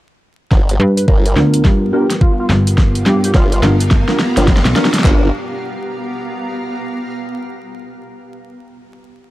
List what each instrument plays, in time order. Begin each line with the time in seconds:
0.51 wobble bass G1, analog synth pad G3 B3 F4 A#4, ambient pad B3, kick, snare, riser
0.69 closed hi-hat
0.80 fm bass G2, analog synth lead B4, cross-stick
0.92 ambient pad G4
0.97 analog synth lead B4, closed hi-hat
1.08 wobble bass G1, analog synth lead A#4, kick
1.25 analog synth lead A#4, closed hi-hat
1.36 fm bass D2, tine electric piano B3 D4 F4 A#4, snare
1.54 closed hi-hat
1.58 ambient pad F5
1.65 fm bass G2, kick, snare
1.93 tine electric piano B3 D4 F4 A#4, analog synth lead G4
2.10 snare, closed hi-hat
2.21 analog synth lead F4, kick
2.40 analog synth lead F4
2.50 fm bass G1, cross-stick, snare
2.54 ambient pad A#5
2.67 closed hi-hat
2.78 kick, snare
2.95 closed hi-hat
3.06 fm bass G2, analog synth lead G4, snare
3.24 analog synth lead G4, closed hi-hat
3.34 wobble bass G1, analog synth lead F4, kick, snare
3.52 analog synth lead F4, closed hi-hat
3.63 fm bass G1, tine electric piano B3 D4 F4 A#4, snare
3.80 closed hi-hat
3.91 kick, snare
4.08 tine electric piano B3 D4 F4 A#4, snare
4.19 snare
4.37 wobble bass G1, tine electric piano B3 D4 F4 A#4, snare, closed hi-hat
4.48 kick, snare
4.56 snare
4.65 fm bass B1, snare
4.76 tine electric piano B3 D4 F4 A#4, snare
4.85 snare
4.94 snare, closed hi-hat
4.99 snare
5.04 wobble bass G1, analog synth pad G3 F4, ambient pad B3, tine electric piano B3 D4 F4 A#4, kick, clap
5.13 ambient pad G4
5.23 ambient pad F5
5.28 ambient pad A#5